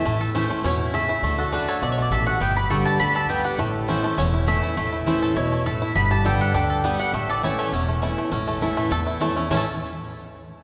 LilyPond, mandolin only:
\new Staff \with { instrumentName = "Mandolin" } { \time 4/4 \key a \mixolydian \tempo 4 = 203 e''8 r8 c''4 cis''4 e''4~ | e''8 a'8 b'8 cis''8 \tuplet 3/2 { d''8 cis''8 d''8 } e''8 fis''8 | g''8 b''8 cis'''8 a''8 b''8 a''8 g''8 fis''8 | r4 c''4 cis''4 e''4~ |
e''8 r8 c''4 cis''4 e''4 | b''8 a''8 g''8 fis''8 g''4. fis''8 | e''8 d''8 cis''8 cis''2~ cis''16 r16 | r1 |
cis''8 r2. r8 | }